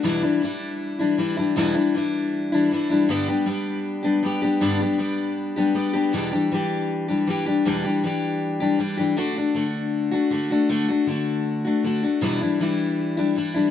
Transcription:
\new Staff \with { instrumentName = "Steel-string acoustic guitar" } { \time 4/4 \key e \minor \tempo 4 = 158 <e, b, e g d' e'>8 <e g d' e'>8 <e g d' e'>4. <e g d' e'>8 <e g d' e'>8 <e g d' e'>8 | <e, b, e g d' e'>8 <e g d' e'>8 <e g d' e'>4. <e g d' e'>8 <e g d' e'>8 <e g d' e'>8 | <g, d g b d' g'>8 <g b d' g'>8 <g b d' g'>4. <g b d' g'>8 <g b d' g'>8 <g b d' g'>8 | <g, d g b d' g'>8 <g b d' g'>8 <g b d' g'>4. <g b d' g'>8 <g b d' g'>8 <g b d' g'>8 |
<e, b, e g d' g'>8 <e g d' g'>8 <e g d' g'>4. <e g d' g'>8 <e g d' g'>8 <e g d' g'>8 | <e, b, e g d' g'>8 <e g d' g'>8 <e g d' g'>4. <e g d' g'>8 <e g d' g'>8 <e g d' g'>8 | <d a d' fis'>8 <a d' fis'>8 <d a d' fis'>4. <a d' fis'>8 <d a d' fis'>8 <a d' fis'>8 | <d a d' fis'>8 <a d' fis'>8 <d a d' fis'>4. <a d' fis'>8 <d a d' fis'>8 <a d' fis'>8 |
<e, b, e g d' e'>8 <e g d' e'>8 <e g d' e'>4. <e g d' e'>8 <e g d' e'>8 <e g d' e'>8 | }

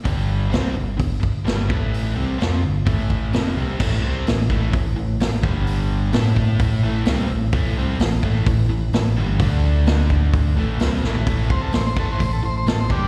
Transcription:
<<
  \new Staff \with { instrumentName = "Transistor combo organ" } { \time 4/4 \key a \minor \tempo 4 = 128 r1 | r1 | r1 | r1 |
r1 | r1 | r8 c''16 a'16 c''16 c''16 a'16 c''16 c''16 a'16 c''16 c''16 a'16 c''16 <d' g'>8 | }
  \new Staff \with { instrumentName = "Overdriven electric guitar" } { \clef bass \time 4/4 \key a \minor <g, d g>4 <c g c'>8 <g, d>8 <g, d>8 r8 <g, d g>8 <a, e a>8~ | <a, e a>8 <c g c'>8 <f c' f'>8 <g, d>8 <a, e a>4 <f, c f>8 <c g c'>8 | <a, e a>8 <c g c'>8 <a, e>8 <a, e a>8 <a, e>8 <a, e>8 <a, e>8 <g, d g>8~ | <g, d g>4 <a e' a'>4. <a, e a>8 <c g c'>8 <a, e>8 |
<a, e a>8 <c g c'>8 <a, e>8 <a, e a>8 <a, e>8 <a, e>8 <a, e>8 <g, d g>8 | <d a d'>2~ <d a d'>8 <a, e a>8 <c g c'>8 <a, e a>8 | <a, e a>8 <c g c'>8 <a, e>8 <a, e a>8 <a, e>8 <a, e>8 <a, e>8 <g, d g>8 | }
  \new Staff \with { instrumentName = "Fingered electric bass" } { \clef bass \time 4/4 \key a \minor g,,4 c,8 g,,8 g,,8 r8 g,,8 a,,8~ | a,,8 c,8 f,8 g,,8 a,,4 f,,8 c,8 | a,,8 c,8 a,,8 a,,8 a,,8 a,,8 a,,8 g,,8~ | g,,4 a,4. a,,8 c,8 a,,8 |
a,,8 c,8 a,,8 a,,8 a,,8 a,,8 a,,8 g,,8 | d,2~ d,8 a,,8 c,8 a,,8 | a,,8 c,8 a,,8 a,,8 a,,8 a,,8 a,,8 g,,8 | }
  \new DrumStaff \with { instrumentName = "Drums" } \drummode { \time 4/4 <hho bd>4 <hho sn>4 <hho bd>8 bd8 <hho sn>8 bd8 | hho4 <hho sn>4 <hho bd>8 bd8 <hho sn>4 | <cymc bd>4 <hho sn>8 bd8 <hho bd>4 <hho sn>8 bd8 | hho4 <hho sn>8 bd8 <hho bd>4 <hho sn>4 |
<hho bd>4 <hho sn>8 bd8 <hho bd>4 <hho sn>4 | <hho bd>4 <hho sn>8 bd8 <hho bd>4 <hho sn>8 sn16 tomfh16 | <hho bd>8 bd8 <hho sn>8 bd8 <hho bd>4 <hho sn>8 bd8 | }
>>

